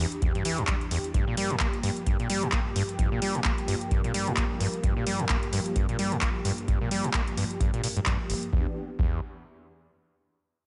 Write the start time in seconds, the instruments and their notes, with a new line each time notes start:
Already playing: analog synth pad E2 E3 D4 G4
0.12 closed hi-hat
0.22 acid bass E2, kick, closed hi-hat
0.35 acid bass G2, closed hi-hat
0.45 acid bass E3, open hi-hat
0.58 acid bass F#2, closed hi-hat
0.68 acid bass G3, kick, clap, closed hi-hat
0.81 closed hi-hat
0.91 acid bass E2, open hi-hat
1.04 closed hi-hat
1.14 analog synth pad G2 F3 A#3, acid bass G2, kick, closed hi-hat
1.27 acid bass A#2
1.37 acid bass G3, open hi-hat
1.50 acid bass A2, closed hi-hat
1.60 acid bass A#3, kick, clap, closed hi-hat
1.73 closed hi-hat
1.83 acid bass G2, open hi-hat
1.97 closed hi-hat
2.06 acid bass G2, kick, closed hi-hat
2.20 acid bass A#2, closed hi-hat
2.30 acid bass G3, open hi-hat
2.43 acid bass A2, closed hi-hat
2.52 acid bass A#3, kick, clap, closed hi-hat
2.76 acid bass G2, open hi-hat
2.89 closed hi-hat
2.99 acid bass G2, kick, closed hi-hat
3.12 acid bass A#2
3.22 acid bass G3, open hi-hat
3.35 acid bass A2, closed hi-hat
3.44 acid bass A#3, kick, clap, closed hi-hat
3.58 closed hi-hat
3.68 acid bass G2, open hi-hat
3.81 closed hi-hat
3.91 acid bass G2, kick, closed hi-hat
4.04 acid bass A#2, closed hi-hat
4.14 acid bass G3, open hi-hat
4.27 acid bass A2, closed hi-hat
4.37 acid bass A#3, kick, clap, closed hi-hat
4.60 acid bass G2, open hi-hat
4.74 closed hi-hat
4.83 acid bass G2, kick, closed hi-hat
4.97 acid bass A#2
5.07 acid bass G3, open hi-hat
5.20 acid bass A2, closed hi-hat
5.29 acid bass A#3, kick, clap, closed hi-hat
5.43 closed hi-hat
5.53 acid bass G2, open hi-hat
5.66 closed hi-hat
5.76 acid bass G2, kick, closed hi-hat
5.89 acid bass A#2, closed hi-hat
5.99 acid bass G3, open hi-hat
6.12 acid bass A2, closed hi-hat
6.21 acid bass A#3, kick, clap, closed hi-hat
6.45 acid bass G2, open hi-hat
6.58 closed hi-hat
6.68 acid bass G2, kick, closed hi-hat
6.81 acid bass A#2
6.91 acid bass G3, open hi-hat
7.04 acid bass A2, closed hi-hat
7.14 acid bass A#3, kick, clap, closed hi-hat
7.28 closed hi-hat
7.37 acid bass G2, open hi-hat
7.51 closed hi-hat
7.60 acid bass G2, kick, closed hi-hat
7.74 acid bass A#2, closed hi-hat
7.83 acid bass A#2, open hi-hat
7.97 acid bass G2, closed hi-hat
8.06 acid bass G2, kick, clap, closed hi-hat
8.30 acid bass G1, open hi-hat
8.43 closed hi-hat
8.53 acid bass E2, analog synth pad E3 B3 D4 G4, kick
8.99 acid bass E2, kick